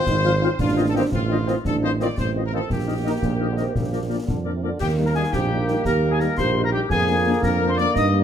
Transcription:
Already playing: trumpet section C5
0.06 tuba G#1, euphonium D#4, concert bass drum, snare
0.23 french horn section F3 C4 F4, euphonium F4, woodwind section C5 F5
0.40 french horn section F3 C4 F4, trombone section F3 C4, euphonium D#4, woodwind section C5 F5
0.59 tuba A1, euphonium D4, trumpet section F4, concert bass drum, snare, crash
0.76 french horn section D#3 C4 F4, woodwind section C5 D#5
0.87 trumpet section A4
0.93 french horn section D#3 C4 F4, trombone section D#3 C4, trumpet section G4, woodwind section C5 D#5
1.12 tuba A1, euphonium C4, trumpet section F4, concert bass drum, snare
1.28 french horn section D#3 C4 F4, euphonium D4, woodwind section C5 D#5
1.46 french horn section D#3 C4 F4, trombone section D#3 C4, euphonium D#4, woodwind section C5 D#5, snare
1.65 tuba A1, euphonium D4, trumpet section A4, concert bass drum, snare
1.82 french horn section D#3 C4 F4, woodwind section C5 D#5, trumpet section C5
2.00 french horn section D#3 C4 F4, trombone section D#3 C4, woodwind section C5 D#5, trumpet section D5, snare
2.17 tuba A1, euphonium C4, trumpet section C5, concert bass drum, snare
2.35 french horn section D#3 C4 F4, woodwind section C5 D#5
2.45 trumpet section A#4
2.52 french horn section D#3 C4 F4, trombone section D#3 C4, trumpet section A4, woodwind section C5 D#5
2.70 tuba A#1, euphonium A#3, trumpet section G4, concert bass drum, snare
2.87 french horn section D#3 A#3 D#4, woodwind section A#4 D#5
3.04 french horn section D#3 A#3 D#4, trombone section D#3 D#4, woodwind section A#4 D#5
3.22 tuba A#1, trombone section A#2, concert bass drum, snare
3.40 french horn section D#3 A#3 D#4, woodwind section A#4 D#5
3.49 trombone section D3
3.57 trombone section C3, french horn section D#3 A#3 D#4, woodwind section A#4 D#5, snare
3.74 tuba A#1, trombone section A#2, concert bass drum, snare
3.92 french horn section F3 A#3 D4, woodwind section A#4 D5
4.09 french horn section F3 A#3 D4, woodwind section A#4 D5
4.26 tuba F2, trombone section D3, concert bass drum, snare
4.44 french horn section F3 A#3 D4, woodwind section A#4 D5
4.55 trombone section C3
4.61 trombone section D3, french horn section F3 A#3 D4, woodwind section A#4 D5
4.79 tuba D#2, trombone section D#3 A#3, euphonium A#3, woodwind section G4, trumpet section G4, piccolo G5, concert bass drum, snare, crash
4.98 french horn section G3 A#3 D#4
5.06 trumpet section A#4, woodwind section A#4, piccolo A#5
5.15 french horn section G3 A#3 D#4, trumpet section G#4, woodwind section G#4, piccolo G#5
5.32 tuba A#1, euphonium C4, woodwind section G4, trumpet section G4, piccolo G5, concert bass drum, snare
5.50 french horn section G3 A#3 D#4, euphonium D4
5.68 french horn section G3 A#3 D#4, euphonium D#4, snare
5.85 tuba D#2, euphonium G4, trumpet section A#4, woodwind section A#4, piccolo A#5, concert bass drum, snare
6.03 french horn section G3 A#3 D#4
6.11 woodwind section G#4, trumpet section G#4, piccolo G#5
6.20 french horn section G3 A#3 D#4, woodwind section A#4, trumpet section A#4, piccolo A#5, snare
6.37 tuba A#1, euphonium G4, trumpet section C5, woodwind section C5, piccolo C6, concert bass drum, snare
6.56 french horn section G3 A#3 D#4
6.64 woodwind section A#4, trumpet section A#4, piccolo A#5
6.71 french horn section G3 A#3 D#4, woodwind section G4, trumpet section G4, piccolo G5
6.89 tuba F2, trombone section D3 A#3, euphonium F4, woodwind section G#4, trumpet section G#4, piccolo G#5, concert bass drum, snare
7.08 french horn section A#3 D4
7.26 french horn section A#3 D4
7.42 tuba F2, euphonium D4, woodwind section A#4, trumpet section A#4, piccolo A#5, concert bass drum, snare
7.61 french horn section A#3 D4
7.68 woodwind section C5, trumpet section C5, piccolo C6
7.76 french horn section A#3 D4, woodwind section D5, trumpet section D5, piccolo D6, snare
7.94 tuba G2, trombone section D#3, euphonium D#4, woodwind section D#5, trumpet section D#5, piccolo D#6, concert bass drum, snare
8.13 french horn section G3 A#3 D#4

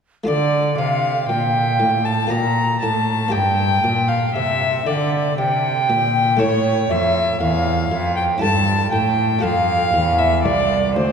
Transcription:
0.24 harpsichord A3 F4 D5, violin D5, flute D5
0.28 cello D3, harpsichord D3
0.77 cello C3, harpsichord C3, violin F5, flute F5
1.29 harpsichord A#2, cello A#2, flute G5, violin G5
1.80 harpsichord A2, cello A2
2.05 flute A5, violin A5
2.27 harpsichord A#3 F4 D5, flute A#5, violin A#5
2.31 cello A#2, harpsichord A#2
2.81 cello A2, harpsichord A2, flute A5, violin A5
3.29 harpsichord A#3 G4 D5, violin G5
3.33 cello G2, harpsichord G2, flute G5
3.84 cello A#2, harpsichord A#2
4.08 violin F5, flute F5
4.34 cello C3, harpsichord C3, violin E5, flute E5
4.87 harpsichord D3, cello D3, violin D5, flute D5
5.38 cello C3, harpsichord C3, flute G5, violin G5
5.89 cello A#2, harpsichord A#2
6.37 cello A2, harpsichord A3 E4 A4, violin C#5, flute C#5
6.41 harpsichord A2
6.90 cello F2, harpsichord F2, flute E5, violin E5
7.41 harpsichord E2, cello E2, flute F5, violin F5
7.92 harpsichord F2, cello F2
8.16 flute G5, violin G5
8.38 harpsichord C#4 E4 A4, flute A5
8.42 cello G2, harpsichord G2, violin A5
8.92 cello A2, harpsichord A2, flute G5, violin G5
9.39 harpsichord D4 F4 A4
9.43 cello F2, harpsichord F2, violin F5, flute F5
9.94 harpsichord E2, cello E2
10.18 violin E5, flute E5
10.43 cello C2, harpsichord C2, violin D5, flute D5
10.95 cello D2, harpsichord D2, violin C5, flute C5

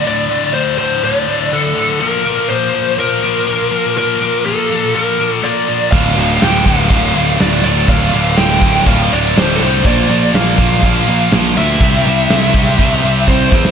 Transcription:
0.06 distorted electric guitar D2 A2 D3, lead electric guitar D5
0.30 distorted electric guitar D2 A2 D3
0.54 distorted electric guitar D2 A2 D3, lead electric guitar C5
0.78 distorted electric guitar D2 A2 D3, lead electric guitar C5
1.03 distorted electric guitar D2 A2 D3, lead electric guitar D5
1.27 distorted electric guitar D2 A2 D3
1.51 distorted electric guitar D2 A2 D3, lead electric guitar A4
1.75 distorted electric guitar D2 A2 D3
2.00 distorted electric guitar A#2 F3 A#3, lead electric guitar A#4
2.26 distorted electric guitar A#2 F3 A#3
2.49 distorted electric guitar A#2 F3 A#3, lead electric guitar C5
2.74 distorted electric guitar A#2 F3 A#3
2.97 distorted electric guitar A#2 F3 A#3, lead electric guitar A#4
3.23 distorted electric guitar A#2 F3 A#3
3.47 distorted electric guitar A#2 F3 A#3
3.71 distorted electric guitar A#2 F3 A#3
3.97 distorted electric guitar A#2 F3 A#3, lead electric guitar A#4
4.22 distorted electric guitar A#2 F3 A#3
4.46 distorted electric guitar A#2 F3 A#3, lead electric guitar A4
4.70 distorted electric guitar A#2 F3 A#3
4.95 distorted electric guitar A#2 F3 A#3, lead electric guitar A#4
5.19 distorted electric guitar A#2 F3 A#3
5.33 lead electric guitar A4
5.43 distorted electric guitar A#2 F3 A#3, lead electric guitar D5
5.68 distorted electric guitar A#2 F3 A#3
5.92 picked electric bass D1, distorted electric guitar D2 A2 D3, lead electric guitar F5, kick, crash
6.16 picked electric bass D1, distorted electric guitar D2 A2 D3, crash
6.41 picked electric bass D1, distorted electric guitar D2 A2 D3, lead electric guitar G5, snare, crash
6.65 picked electric bass D1, distorted electric guitar D2 A2 D3, lead electric guitar F5, kick, crash
6.89 picked electric bass D1, distorted electric guitar D2 A2 D3, kick, crash
7.15 picked electric bass D1, distorted electric guitar D2 A2 D3, crash
7.39 picked electric bass D1, distorted electric guitar D2 A2 D3, lead electric guitar D5, snare, crash
7.63 picked electric bass D1, distorted electric guitar D2 A2 D3, lead electric guitar D5, crash
7.87 picked electric bass D1, distorted electric guitar D2 A2 D3, lead electric guitar F5, kick, crash
8.13 picked electric bass D1, distorted electric guitar D2 A2 D3, crash
8.36 picked electric bass D1, distorted electric guitar D2 A2 D3, lead electric guitar G5, snare, crash
8.62 picked electric bass D1, distorted electric guitar D2 A2 D3, kick, crash
8.86 picked electric bass D1, distorted electric guitar D2 A2 D3, lead electric guitar F5, kick, crash
9.11 picked electric bass D1, distorted electric guitar D2 A2 D3, lead electric guitar D5, crash
9.35 picked electric bass D1, distorted electric guitar D2 A2 D3, lead electric guitar C5, snare, crash
9.55 lead electric guitar A4
9.60 picked electric bass C2, distorted electric guitar D2 A2 D3, lead electric guitar C5, crash
9.84 picked electric bass A#1, distorted electric guitar A#2 F3 A#3, lead electric guitar D5, kick, crash
10.09 picked electric bass A#1, distorted electric guitar A#2 F3 A#3, crash
10.34 picked electric bass A#1, distorted electric guitar A#2 F3 A#3, lead electric guitar F5, snare, crash
10.58 picked electric bass A#1, distorted electric guitar A#2 F3 A#3, kick, crash
10.83 picked electric bass A#1, distorted electric guitar A#2 F3 A#3, lead electric guitar F5, kick, crash
11.07 picked electric bass A#1, distorted electric guitar A#2 F3 A#3, crash
11.31 picked electric bass A#1, distorted electric guitar A#2 F3 A#3, snare, crash
11.56 picked electric bass D2, distorted electric guitar A#2 F3 A#3, lead electric guitar E5, crash
11.80 picked electric bass C2, distorted electric guitar C3 G3 C4, kick, crash
12.04 picked electric bass C2, distorted electric guitar C3 G3 C4, crash
12.29 picked electric bass C2, distorted electric guitar C3 G3 C4, snare, crash
12.54 picked electric bass C2, distorted electric guitar C3 G3 C4, kick, crash
12.78 picked electric bass C2, distorted electric guitar C3 G3 C4, kick, crash
13.03 picked electric bass C2, distorted electric guitar C3 G3 C4, crash
13.28 picked electric bass C2, distorted electric guitar C3 G3 C4, lead electric guitar C5, kick
13.52 picked electric bass E2, distorted electric guitar C3 G3 C4, kick
13.65 snare

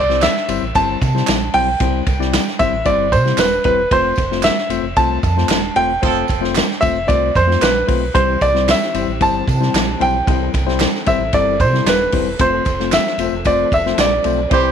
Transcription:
Already playing: sub bass C2, grand piano D5
0.09 tine electric piano G3 C4 E4 C5, snare
0.22 grand piano E5, snare, clap, ride, tambourine
0.36 snare
0.48 sub bass G1, tine electric piano G3 C4 E4 C5, ride, tambourine
0.62 sub bass A1
0.75 sub bass G1, tine electric piano G3 C4 E4 C5, grand piano A5, kick, ride, tambourine
1.02 sub bass C3, kick, ride, tambourine
1.15 tine electric piano G3 C4 E4 C5, snare
1.27 sub bass A#1, snare, clap, ride, tambourine
1.54 sub bass B1, tine electric piano G3 C4 E4 C5, grand piano G5, open hi-hat, ride
1.80 sub bass C2, tine electric piano G3 C4 E4 C5, kick, hi-hat pedal, ride
2.07 sub bass C2, kick, ride, tambourine
2.20 tine electric piano G3 C4 E4 D5, snare
2.33 snare, clap, ride, tambourine
2.47 snare
2.59 sub bass G1, tine electric piano G3 C4 E4 C5, grand piano E5, kick, ride, tambourine
2.72 sub bass A1
2.85 sub bass G1, tine electric piano G3 C4 E4 C5, grand piano D5, kick, ride, tambourine
3.12 sub bass C3, grand piano C5, kick, ride, tambourine
3.25 tine electric piano G3 C4 E4 C5, snare
3.37 sub bass D#1, grand piano B4, snare, clap, ride, tambourine
3.64 sub bass E1, tine electric piano G3 C4 E4 C5, grand piano B4, kick, ride, tambourine
3.91 sub bass F1, tine electric piano A3 C4 F4 C5, grand piano C5, kick, ride
4.16 sub bass F1, kick, ride, tambourine
4.31 tine electric piano A3 C4 F4 C5, snare
4.43 grand piano E5, snare, clap, ride, tambourine
4.58 snare
4.69 sub bass E1, tine electric piano A3 C4 F4 C5, ride, tambourine
4.83 sub bass F1
4.96 sub bass C2, tine electric piano A3 C4 F4 C5, grand piano A5, kick, ride, tambourine
5.23 sub bass F2, kick, ride, tambourine
5.37 tine electric piano A3 C4 F4 C5, snare
5.48 sub bass D#1, snare, clap, ride, tambourine
5.76 sub bass E1, tine electric piano A3 C4 F4 C5, grand piano G5, ride
6.02 sub bass F1, horn section F3 C4 A4, tine electric piano A3 C4 F4 C5, kick, ride, tambourine
6.28 sub bass F1, kick, ride, tambourine
6.41 tine electric piano A3 C4 F4 C5, snare
6.55 snare, clap, ride, tambourine
6.71 snare
6.81 sub bass E1, tine electric piano A3 C4 F4 C5, grand piano E5, kick, ride, tambourine
6.95 sub bass F1
7.07 sub bass C2, tine electric piano A3 C4 F4 C5, grand piano D5, kick, ride, tambourine
7.35 sub bass F2, grand piano C5, kick, ride, tambourine
7.47 tine electric piano A3 C4 F4 C5, snare
7.62 sub bass A#1, grand piano B4, snare, clap, ride, tambourine
7.87 sub bass B1, tine electric piano A3 C4 F4 C5, kick, open hi-hat, ride
8.14 sub bass C2, tonewheel organ E3 C4 G4, tine electric piano G3 C4 E4 C5, grand piano C5, kick, hi-hat pedal, ride
8.41 sub bass C2, grand piano D5, kick, ride, tambourine
8.54 tine electric piano G3 C4 E4 C5, snare
8.68 grand piano E5, snare, clap, ride, tambourine
8.82 snare
8.94 sub bass G1, tine electric piano G3 C4 E4 C5, ride, tambourine
9.08 sub bass A1
9.21 sub bass G1, tine electric piano G3 C4 E4 C5, grand piano A5, kick, ride, tambourine
9.48 sub bass C3, kick, ride, tambourine
9.60 tine electric piano G3 C4 E4 C5, snare
9.74 sub bass A#1, snare, clap, ride, tambourine
10.00 sub bass B1, tine electric piano G3 C4 E4 C5, grand piano G5, ride, tambourine
10.27 sub bass C2, tine electric piano G3 C4 E4 C5, tonewheel organ A4, kick, ride, tambourine
10.54 sub bass C2, kick, ride, tambourine
10.67 tine electric piano G3 C4 E4 C5, snare
10.80 snare, clap, ride, tambourine
10.95 snare
11.06 sub bass G1, tine electric piano G3 C4 E4 C5, grand piano E5, kick, ride, tambourine
11.19 sub bass A1
11.33 sub bass G1, tine electric piano G3 C4 E4 A4, grand piano D5, kick, ride, tambourine
11.59 sub bass C3, grand piano C5, kick, ride, tambourine
11.73 tine electric piano G3 C4 E4 C5, snare
11.85 sub bass D#1, grand piano B4, snare, clap, ride, tambourine
12.12 sub bass E1, tine electric piano G3 C4 E4 C5, kick, open hi-hat, ride
12.39 sub bass F1, tonewheel organ F3 C4 A4, tine electric piano A3 C4 F4 C5, grand piano C5, kick, hi-hat pedal, ride, tambourine
12.65 sub bass F1, kick, ride, tambourine
12.80 tine electric piano A3 C4 F4 C5, snare
12.92 grand piano E5, snare, clap, ride, tambourine
13.07 snare
13.18 sub bass E1, tine electric piano A3 C4 F4 C5, ride, tambourine
13.32 sub bass F1
13.45 tine electric piano A3 C4 F4 C5, grand piano D5, kick, ride, tambourine
13.72 sub bass E1, grand piano E5, kick, ride, tambourine
13.86 tine electric piano A3 C4 F4 C5, snare
13.98 sub bass A#1, grand piano D5, snare, clap, ride, tambourine
14.24 sub bass B1, tine electric piano A3 C4 F4 C5, ride, tambourine
14.50 sub bass C2, horn section E3 C4 G4, tonewheel organ E3 G4, tine electric piano G3 C4 E4 C5, grand piano C5, kick, ride, tambourine

